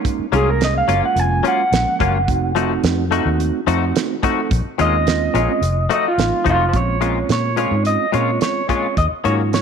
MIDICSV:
0, 0, Header, 1, 7, 480
1, 0, Start_track
1, 0, Key_signature, -5, "minor"
1, 0, Tempo, 557621
1, 37, Time_signature, 4, 2, 24, 8
1, 8278, End_track
2, 0, Start_track
2, 0, Title_t, "Clean electric guitar"
2, 0, Program_c, 0, 27
2, 307, Note_on_c, 0, 68, 93
2, 410, Note_off_c, 0, 68, 0
2, 429, Note_on_c, 0, 70, 85
2, 529, Note_off_c, 0, 70, 0
2, 553, Note_on_c, 0, 75, 78
2, 653, Note_off_c, 0, 75, 0
2, 667, Note_on_c, 0, 77, 78
2, 886, Note_off_c, 0, 77, 0
2, 907, Note_on_c, 0, 78, 73
2, 1028, Note_off_c, 0, 78, 0
2, 1028, Note_on_c, 0, 80, 88
2, 1246, Note_off_c, 0, 80, 0
2, 1273, Note_on_c, 0, 78, 97
2, 2660, Note_off_c, 0, 78, 0
2, 4143, Note_on_c, 0, 75, 112
2, 5062, Note_off_c, 0, 75, 0
2, 5109, Note_on_c, 0, 75, 87
2, 5211, Note_off_c, 0, 75, 0
2, 5234, Note_on_c, 0, 65, 85
2, 5565, Note_off_c, 0, 65, 0
2, 5589, Note_on_c, 0, 65, 91
2, 5596, Note_on_c, 0, 77, 92
2, 5746, Note_off_c, 0, 77, 0
2, 5755, Note_on_c, 0, 72, 74
2, 5806, Note_off_c, 0, 65, 0
2, 5806, Note_off_c, 0, 72, 0
2, 5819, Note_on_c, 0, 73, 92
2, 6293, Note_off_c, 0, 73, 0
2, 6303, Note_on_c, 0, 73, 87
2, 6526, Note_off_c, 0, 73, 0
2, 6536, Note_on_c, 0, 73, 80
2, 6767, Note_off_c, 0, 73, 0
2, 6771, Note_on_c, 0, 75, 86
2, 7009, Note_off_c, 0, 75, 0
2, 7012, Note_on_c, 0, 73, 86
2, 7229, Note_off_c, 0, 73, 0
2, 7251, Note_on_c, 0, 73, 93
2, 7480, Note_off_c, 0, 73, 0
2, 7490, Note_on_c, 0, 73, 80
2, 7726, Note_off_c, 0, 73, 0
2, 7729, Note_on_c, 0, 75, 81
2, 7793, Note_off_c, 0, 75, 0
2, 7966, Note_on_c, 0, 73, 85
2, 8030, Note_off_c, 0, 73, 0
2, 8214, Note_on_c, 0, 73, 79
2, 8278, Note_off_c, 0, 73, 0
2, 8278, End_track
3, 0, Start_track
3, 0, Title_t, "Tonewheel organ"
3, 0, Program_c, 1, 16
3, 0, Note_on_c, 1, 56, 76
3, 0, Note_on_c, 1, 58, 74
3, 0, Note_on_c, 1, 61, 72
3, 0, Note_on_c, 1, 63, 85
3, 224, Note_off_c, 1, 56, 0
3, 228, Note_off_c, 1, 58, 0
3, 229, Note_off_c, 1, 61, 0
3, 232, Note_off_c, 1, 63, 0
3, 280, Note_on_c, 1, 56, 80
3, 288, Note_on_c, 1, 58, 70
3, 291, Note_on_c, 1, 61, 70
3, 294, Note_on_c, 1, 68, 90
3, 813, Note_off_c, 1, 56, 0
3, 818, Note_off_c, 1, 58, 0
3, 819, Note_off_c, 1, 61, 0
3, 820, Note_off_c, 1, 68, 0
3, 878, Note_on_c, 1, 56, 69
3, 886, Note_on_c, 1, 58, 67
3, 891, Note_on_c, 1, 61, 71
3, 893, Note_on_c, 1, 65, 84
3, 1412, Note_off_c, 1, 56, 0
3, 1416, Note_off_c, 1, 58, 0
3, 1418, Note_off_c, 1, 61, 0
3, 1419, Note_off_c, 1, 65, 0
3, 1469, Note_on_c, 1, 56, 70
3, 1478, Note_on_c, 1, 58, 65
3, 1484, Note_on_c, 1, 61, 64
3, 1487, Note_on_c, 1, 53, 81
3, 1901, Note_off_c, 1, 56, 0
3, 1906, Note_off_c, 1, 58, 0
3, 1909, Note_off_c, 1, 61, 0
3, 1910, Note_off_c, 1, 53, 0
3, 1957, Note_on_c, 1, 57, 92
3, 1963, Note_on_c, 1, 60, 88
3, 1968, Note_on_c, 1, 63, 81
3, 1973, Note_on_c, 1, 66, 100
3, 2171, Note_off_c, 1, 57, 0
3, 2174, Note_off_c, 1, 60, 0
3, 2176, Note_off_c, 1, 63, 0
3, 2179, Note_off_c, 1, 66, 0
3, 2193, Note_on_c, 1, 57, 87
3, 2202, Note_on_c, 1, 60, 81
3, 2205, Note_on_c, 1, 63, 83
3, 2212, Note_on_c, 1, 66, 101
3, 2623, Note_off_c, 1, 57, 0
3, 2628, Note_off_c, 1, 60, 0
3, 2629, Note_off_c, 1, 63, 0
3, 2633, Note_off_c, 1, 66, 0
3, 2670, Note_on_c, 1, 57, 101
3, 2672, Note_on_c, 1, 60, 96
3, 2678, Note_on_c, 1, 63, 93
3, 2688, Note_on_c, 1, 66, 109
3, 3101, Note_off_c, 1, 57, 0
3, 3103, Note_off_c, 1, 60, 0
3, 3105, Note_off_c, 1, 63, 0
3, 3110, Note_off_c, 1, 66, 0
3, 3152, Note_on_c, 1, 57, 89
3, 3157, Note_on_c, 1, 60, 81
3, 3163, Note_on_c, 1, 63, 85
3, 3168, Note_on_c, 1, 66, 98
3, 3582, Note_off_c, 1, 57, 0
3, 3585, Note_off_c, 1, 60, 0
3, 3588, Note_off_c, 1, 63, 0
3, 3590, Note_off_c, 1, 66, 0
3, 3633, Note_on_c, 1, 57, 86
3, 3642, Note_on_c, 1, 60, 80
3, 3645, Note_on_c, 1, 63, 69
3, 3652, Note_on_c, 1, 69, 88
3, 3875, Note_off_c, 1, 57, 0
3, 3879, Note_off_c, 1, 60, 0
3, 3881, Note_off_c, 1, 63, 0
3, 3885, Note_off_c, 1, 69, 0
3, 4116, Note_on_c, 1, 56, 76
3, 4122, Note_on_c, 1, 60, 73
3, 4129, Note_on_c, 1, 61, 73
3, 4135, Note_on_c, 1, 65, 96
3, 4651, Note_off_c, 1, 56, 0
3, 4654, Note_off_c, 1, 60, 0
3, 4658, Note_off_c, 1, 61, 0
3, 4661, Note_off_c, 1, 65, 0
3, 4713, Note_on_c, 1, 56, 93
3, 4718, Note_on_c, 1, 60, 82
3, 4722, Note_on_c, 1, 61, 80
3, 4733, Note_on_c, 1, 65, 101
3, 4834, Note_off_c, 1, 56, 0
3, 4837, Note_off_c, 1, 60, 0
3, 4839, Note_off_c, 1, 61, 0
3, 4844, Note_off_c, 1, 65, 0
3, 5311, Note_on_c, 1, 54, 75
3, 5314, Note_on_c, 1, 57, 66
3, 5324, Note_on_c, 1, 60, 63
3, 5326, Note_on_c, 1, 63, 72
3, 5742, Note_off_c, 1, 54, 0
3, 5744, Note_off_c, 1, 57, 0
3, 5749, Note_off_c, 1, 60, 0
3, 5750, Note_off_c, 1, 63, 0
3, 5792, Note_on_c, 1, 56, 72
3, 5801, Note_on_c, 1, 60, 65
3, 5809, Note_on_c, 1, 61, 63
3, 5811, Note_on_c, 1, 65, 75
3, 6009, Note_off_c, 1, 56, 0
3, 6013, Note_off_c, 1, 60, 0
3, 6017, Note_off_c, 1, 61, 0
3, 6018, Note_off_c, 1, 65, 0
3, 6029, Note_on_c, 1, 56, 66
3, 6032, Note_on_c, 1, 60, 60
3, 6035, Note_on_c, 1, 61, 64
3, 6044, Note_on_c, 1, 65, 72
3, 6461, Note_off_c, 1, 56, 0
3, 6463, Note_off_c, 1, 60, 0
3, 6464, Note_off_c, 1, 61, 0
3, 6469, Note_off_c, 1, 65, 0
3, 6512, Note_on_c, 1, 56, 78
3, 6518, Note_on_c, 1, 60, 68
3, 6524, Note_on_c, 1, 61, 70
3, 6525, Note_on_c, 1, 65, 89
3, 6943, Note_off_c, 1, 56, 0
3, 6946, Note_off_c, 1, 60, 0
3, 6949, Note_off_c, 1, 61, 0
3, 6949, Note_off_c, 1, 65, 0
3, 6990, Note_on_c, 1, 56, 75
3, 6998, Note_on_c, 1, 60, 67
3, 7001, Note_on_c, 1, 61, 71
3, 7004, Note_on_c, 1, 65, 81
3, 7422, Note_off_c, 1, 56, 0
3, 7426, Note_off_c, 1, 60, 0
3, 7428, Note_off_c, 1, 61, 0
3, 7429, Note_off_c, 1, 65, 0
3, 7466, Note_on_c, 1, 56, 59
3, 7472, Note_on_c, 1, 60, 56
3, 7476, Note_on_c, 1, 61, 58
3, 7481, Note_on_c, 1, 65, 64
3, 7713, Note_off_c, 1, 56, 0
3, 7715, Note_off_c, 1, 60, 0
3, 7717, Note_off_c, 1, 61, 0
3, 7720, Note_off_c, 1, 65, 0
3, 7953, Note_on_c, 1, 54, 72
3, 7961, Note_on_c, 1, 58, 71
3, 7964, Note_on_c, 1, 61, 68
3, 7974, Note_on_c, 1, 65, 80
3, 8278, Note_off_c, 1, 54, 0
3, 8278, Note_off_c, 1, 58, 0
3, 8278, Note_off_c, 1, 61, 0
3, 8278, Note_off_c, 1, 65, 0
3, 8278, End_track
4, 0, Start_track
4, 0, Title_t, "Clean electric guitar"
4, 0, Program_c, 2, 27
4, 278, Note_on_c, 2, 54, 78
4, 280, Note_on_c, 2, 58, 74
4, 286, Note_on_c, 2, 61, 76
4, 289, Note_on_c, 2, 65, 76
4, 422, Note_off_c, 2, 54, 0
4, 424, Note_off_c, 2, 58, 0
4, 427, Note_off_c, 2, 61, 0
4, 428, Note_off_c, 2, 65, 0
4, 756, Note_on_c, 2, 54, 74
4, 762, Note_on_c, 2, 58, 70
4, 764, Note_on_c, 2, 61, 81
4, 767, Note_on_c, 2, 65, 86
4, 901, Note_off_c, 2, 54, 0
4, 905, Note_off_c, 2, 58, 0
4, 905, Note_off_c, 2, 61, 0
4, 907, Note_off_c, 2, 65, 0
4, 1233, Note_on_c, 2, 54, 74
4, 1241, Note_on_c, 2, 58, 87
4, 1242, Note_on_c, 2, 61, 83
4, 1249, Note_on_c, 2, 65, 89
4, 1380, Note_off_c, 2, 54, 0
4, 1384, Note_off_c, 2, 58, 0
4, 1385, Note_off_c, 2, 61, 0
4, 1388, Note_off_c, 2, 65, 0
4, 1722, Note_on_c, 2, 54, 78
4, 1726, Note_on_c, 2, 58, 80
4, 1730, Note_on_c, 2, 65, 83
4, 1731, Note_on_c, 2, 61, 80
4, 1865, Note_off_c, 2, 54, 0
4, 1867, Note_off_c, 2, 58, 0
4, 1869, Note_off_c, 2, 61, 0
4, 1869, Note_off_c, 2, 65, 0
4, 2196, Note_on_c, 2, 53, 87
4, 2203, Note_on_c, 2, 57, 86
4, 2207, Note_on_c, 2, 63, 93
4, 2208, Note_on_c, 2, 66, 87
4, 2342, Note_off_c, 2, 53, 0
4, 2345, Note_off_c, 2, 57, 0
4, 2347, Note_off_c, 2, 63, 0
4, 2348, Note_off_c, 2, 66, 0
4, 2676, Note_on_c, 2, 53, 81
4, 2682, Note_on_c, 2, 57, 95
4, 2685, Note_on_c, 2, 63, 99
4, 2690, Note_on_c, 2, 66, 96
4, 2822, Note_off_c, 2, 53, 0
4, 2825, Note_off_c, 2, 57, 0
4, 2826, Note_off_c, 2, 63, 0
4, 2828, Note_off_c, 2, 66, 0
4, 3158, Note_on_c, 2, 53, 89
4, 3161, Note_on_c, 2, 57, 95
4, 3164, Note_on_c, 2, 63, 93
4, 3169, Note_on_c, 2, 66, 102
4, 3303, Note_off_c, 2, 53, 0
4, 3304, Note_off_c, 2, 57, 0
4, 3305, Note_off_c, 2, 63, 0
4, 3308, Note_off_c, 2, 66, 0
4, 3642, Note_on_c, 2, 53, 78
4, 3647, Note_on_c, 2, 57, 90
4, 3647, Note_on_c, 2, 63, 97
4, 3652, Note_on_c, 2, 66, 98
4, 3784, Note_off_c, 2, 53, 0
4, 3787, Note_off_c, 2, 57, 0
4, 3787, Note_off_c, 2, 63, 0
4, 3789, Note_off_c, 2, 66, 0
4, 4118, Note_on_c, 2, 46, 83
4, 4124, Note_on_c, 2, 56, 84
4, 4126, Note_on_c, 2, 61, 87
4, 4128, Note_on_c, 2, 65, 92
4, 4262, Note_off_c, 2, 46, 0
4, 4265, Note_off_c, 2, 56, 0
4, 4267, Note_off_c, 2, 61, 0
4, 4267, Note_off_c, 2, 65, 0
4, 4596, Note_on_c, 2, 46, 79
4, 4605, Note_on_c, 2, 56, 77
4, 4608, Note_on_c, 2, 61, 84
4, 4608, Note_on_c, 2, 65, 85
4, 4741, Note_off_c, 2, 46, 0
4, 4746, Note_off_c, 2, 56, 0
4, 4747, Note_off_c, 2, 61, 0
4, 4747, Note_off_c, 2, 65, 0
4, 5074, Note_on_c, 2, 53, 79
4, 5078, Note_on_c, 2, 57, 88
4, 5079, Note_on_c, 2, 63, 88
4, 5086, Note_on_c, 2, 66, 91
4, 5220, Note_off_c, 2, 53, 0
4, 5222, Note_off_c, 2, 57, 0
4, 5223, Note_off_c, 2, 63, 0
4, 5227, Note_off_c, 2, 66, 0
4, 5548, Note_on_c, 2, 53, 86
4, 5556, Note_on_c, 2, 57, 75
4, 5560, Note_on_c, 2, 63, 96
4, 5564, Note_on_c, 2, 66, 85
4, 5698, Note_off_c, 2, 53, 0
4, 5701, Note_off_c, 2, 57, 0
4, 5703, Note_off_c, 2, 63, 0
4, 5705, Note_off_c, 2, 66, 0
4, 6032, Note_on_c, 2, 46, 70
4, 6035, Note_on_c, 2, 56, 69
4, 6038, Note_on_c, 2, 61, 73
4, 6040, Note_on_c, 2, 65, 71
4, 6180, Note_off_c, 2, 46, 0
4, 6181, Note_off_c, 2, 56, 0
4, 6182, Note_off_c, 2, 61, 0
4, 6183, Note_off_c, 2, 65, 0
4, 6512, Note_on_c, 2, 46, 69
4, 6518, Note_on_c, 2, 56, 66
4, 6524, Note_on_c, 2, 65, 79
4, 6525, Note_on_c, 2, 61, 76
4, 6660, Note_off_c, 2, 46, 0
4, 6663, Note_off_c, 2, 56, 0
4, 6666, Note_off_c, 2, 61, 0
4, 6666, Note_off_c, 2, 65, 0
4, 6992, Note_on_c, 2, 46, 69
4, 6997, Note_on_c, 2, 56, 70
4, 7002, Note_on_c, 2, 61, 80
4, 7005, Note_on_c, 2, 65, 80
4, 7140, Note_off_c, 2, 46, 0
4, 7142, Note_off_c, 2, 56, 0
4, 7145, Note_off_c, 2, 61, 0
4, 7146, Note_off_c, 2, 65, 0
4, 7480, Note_on_c, 2, 46, 73
4, 7482, Note_on_c, 2, 56, 77
4, 7485, Note_on_c, 2, 61, 81
4, 7490, Note_on_c, 2, 65, 80
4, 7624, Note_off_c, 2, 46, 0
4, 7625, Note_off_c, 2, 56, 0
4, 7627, Note_off_c, 2, 61, 0
4, 7629, Note_off_c, 2, 65, 0
4, 7955, Note_on_c, 2, 51, 76
4, 7956, Note_on_c, 2, 58, 72
4, 7962, Note_on_c, 2, 61, 80
4, 7962, Note_on_c, 2, 66, 81
4, 8102, Note_off_c, 2, 51, 0
4, 8103, Note_off_c, 2, 58, 0
4, 8105, Note_off_c, 2, 61, 0
4, 8106, Note_off_c, 2, 66, 0
4, 8278, End_track
5, 0, Start_track
5, 0, Title_t, "Fingered electric bass"
5, 0, Program_c, 3, 33
5, 279, Note_on_c, 3, 36, 84
5, 699, Note_off_c, 3, 36, 0
5, 761, Note_on_c, 3, 30, 85
5, 865, Note_off_c, 3, 30, 0
5, 997, Note_on_c, 3, 29, 96
5, 1207, Note_off_c, 3, 29, 0
5, 1481, Note_on_c, 3, 34, 81
5, 1585, Note_off_c, 3, 34, 0
5, 1727, Note_on_c, 3, 30, 75
5, 1965, Note_off_c, 3, 30, 0
5, 1965, Note_on_c, 3, 29, 101
5, 2382, Note_off_c, 3, 29, 0
5, 2441, Note_on_c, 3, 41, 99
5, 2756, Note_off_c, 3, 41, 0
5, 2802, Note_on_c, 3, 39, 89
5, 3010, Note_off_c, 3, 39, 0
5, 3160, Note_on_c, 3, 41, 85
5, 3369, Note_off_c, 3, 41, 0
5, 3886, Note_on_c, 3, 34, 106
5, 3988, Note_off_c, 3, 34, 0
5, 4127, Note_on_c, 3, 39, 93
5, 4543, Note_off_c, 3, 39, 0
5, 4600, Note_on_c, 3, 34, 89
5, 4705, Note_off_c, 3, 34, 0
5, 4833, Note_on_c, 3, 29, 104
5, 5045, Note_off_c, 3, 29, 0
5, 5319, Note_on_c, 3, 33, 81
5, 5424, Note_off_c, 3, 33, 0
5, 5563, Note_on_c, 3, 29, 83
5, 5771, Note_off_c, 3, 29, 0
5, 5801, Note_on_c, 3, 34, 85
5, 6220, Note_off_c, 3, 34, 0
5, 6278, Note_on_c, 3, 46, 85
5, 6594, Note_off_c, 3, 46, 0
5, 6639, Note_on_c, 3, 44, 80
5, 6849, Note_off_c, 3, 44, 0
5, 7006, Note_on_c, 3, 46, 72
5, 7213, Note_off_c, 3, 46, 0
5, 7727, Note_on_c, 3, 39, 96
5, 7830, Note_off_c, 3, 39, 0
5, 7964, Note_on_c, 3, 44, 81
5, 8278, Note_off_c, 3, 44, 0
5, 8278, End_track
6, 0, Start_track
6, 0, Title_t, "Muted fingered electric bass strokes"
6, 166, Note_on_c, 9, 29, 38
6, 252, Note_off_c, 9, 29, 0
6, 4003, Note_on_c, 9, 29, 39
6, 4089, Note_off_c, 9, 29, 0
6, 7851, Note_on_c, 9, 29, 33
6, 7937, Note_off_c, 9, 29, 0
6, 8278, End_track
7, 0, Start_track
7, 0, Title_t, "Drums"
7, 42, Note_on_c, 9, 36, 107
7, 43, Note_on_c, 9, 42, 76
7, 128, Note_off_c, 9, 36, 0
7, 129, Note_off_c, 9, 42, 0
7, 284, Note_on_c, 9, 42, 62
7, 370, Note_off_c, 9, 42, 0
7, 524, Note_on_c, 9, 42, 71
7, 532, Note_on_c, 9, 38, 97
7, 610, Note_off_c, 9, 42, 0
7, 618, Note_off_c, 9, 38, 0
7, 762, Note_on_c, 9, 42, 64
7, 848, Note_off_c, 9, 42, 0
7, 1003, Note_on_c, 9, 42, 80
7, 1089, Note_off_c, 9, 42, 0
7, 1245, Note_on_c, 9, 42, 59
7, 1332, Note_off_c, 9, 42, 0
7, 1486, Note_on_c, 9, 42, 86
7, 1495, Note_on_c, 9, 38, 122
7, 1572, Note_off_c, 9, 42, 0
7, 1581, Note_off_c, 9, 38, 0
7, 1724, Note_on_c, 9, 36, 92
7, 1725, Note_on_c, 9, 42, 64
7, 1810, Note_off_c, 9, 36, 0
7, 1812, Note_off_c, 9, 42, 0
7, 1964, Note_on_c, 9, 36, 103
7, 1965, Note_on_c, 9, 42, 76
7, 2050, Note_off_c, 9, 36, 0
7, 2052, Note_off_c, 9, 42, 0
7, 2204, Note_on_c, 9, 42, 64
7, 2290, Note_off_c, 9, 42, 0
7, 2441, Note_on_c, 9, 42, 78
7, 2449, Note_on_c, 9, 38, 108
7, 2527, Note_off_c, 9, 42, 0
7, 2535, Note_off_c, 9, 38, 0
7, 2686, Note_on_c, 9, 42, 66
7, 2772, Note_off_c, 9, 42, 0
7, 2926, Note_on_c, 9, 42, 81
7, 3012, Note_off_c, 9, 42, 0
7, 3165, Note_on_c, 9, 42, 65
7, 3251, Note_off_c, 9, 42, 0
7, 3405, Note_on_c, 9, 42, 88
7, 3414, Note_on_c, 9, 38, 114
7, 3491, Note_off_c, 9, 42, 0
7, 3500, Note_off_c, 9, 38, 0
7, 3643, Note_on_c, 9, 36, 93
7, 3644, Note_on_c, 9, 42, 66
7, 3729, Note_off_c, 9, 36, 0
7, 3731, Note_off_c, 9, 42, 0
7, 3883, Note_on_c, 9, 36, 116
7, 3885, Note_on_c, 9, 42, 81
7, 3969, Note_off_c, 9, 36, 0
7, 3971, Note_off_c, 9, 42, 0
7, 4123, Note_on_c, 9, 42, 66
7, 4209, Note_off_c, 9, 42, 0
7, 4363, Note_on_c, 9, 42, 77
7, 4372, Note_on_c, 9, 38, 102
7, 4449, Note_off_c, 9, 42, 0
7, 4458, Note_off_c, 9, 38, 0
7, 4604, Note_on_c, 9, 42, 60
7, 4690, Note_off_c, 9, 42, 0
7, 4842, Note_on_c, 9, 42, 81
7, 4929, Note_off_c, 9, 42, 0
7, 5082, Note_on_c, 9, 42, 60
7, 5168, Note_off_c, 9, 42, 0
7, 5324, Note_on_c, 9, 42, 83
7, 5333, Note_on_c, 9, 38, 116
7, 5410, Note_off_c, 9, 42, 0
7, 5419, Note_off_c, 9, 38, 0
7, 5559, Note_on_c, 9, 36, 87
7, 5561, Note_on_c, 9, 42, 64
7, 5645, Note_off_c, 9, 36, 0
7, 5647, Note_off_c, 9, 42, 0
7, 5796, Note_on_c, 9, 42, 75
7, 5798, Note_on_c, 9, 36, 100
7, 5882, Note_off_c, 9, 42, 0
7, 5884, Note_off_c, 9, 36, 0
7, 6039, Note_on_c, 9, 42, 59
7, 6125, Note_off_c, 9, 42, 0
7, 6277, Note_on_c, 9, 42, 76
7, 6286, Note_on_c, 9, 38, 92
7, 6363, Note_off_c, 9, 42, 0
7, 6372, Note_off_c, 9, 38, 0
7, 6517, Note_on_c, 9, 42, 61
7, 6603, Note_off_c, 9, 42, 0
7, 6757, Note_on_c, 9, 42, 82
7, 6843, Note_off_c, 9, 42, 0
7, 7003, Note_on_c, 9, 42, 59
7, 7089, Note_off_c, 9, 42, 0
7, 7238, Note_on_c, 9, 42, 84
7, 7247, Note_on_c, 9, 38, 107
7, 7325, Note_off_c, 9, 42, 0
7, 7333, Note_off_c, 9, 38, 0
7, 7482, Note_on_c, 9, 36, 81
7, 7484, Note_on_c, 9, 42, 66
7, 7568, Note_off_c, 9, 36, 0
7, 7570, Note_off_c, 9, 42, 0
7, 7722, Note_on_c, 9, 36, 97
7, 7725, Note_on_c, 9, 42, 80
7, 7808, Note_off_c, 9, 36, 0
7, 7811, Note_off_c, 9, 42, 0
7, 7962, Note_on_c, 9, 42, 60
7, 8048, Note_off_c, 9, 42, 0
7, 8204, Note_on_c, 9, 42, 70
7, 8212, Note_on_c, 9, 38, 95
7, 8278, Note_off_c, 9, 38, 0
7, 8278, Note_off_c, 9, 42, 0
7, 8278, End_track
0, 0, End_of_file